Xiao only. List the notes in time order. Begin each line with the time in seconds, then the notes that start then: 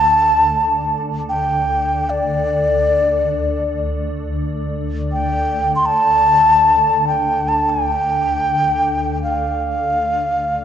Already playing: A5
1.29 G5
2.10 D5
5.12 G5
5.76 C6
5.86 A5
7.07 G5
7.48 A5
7.70 G5
9.23 F5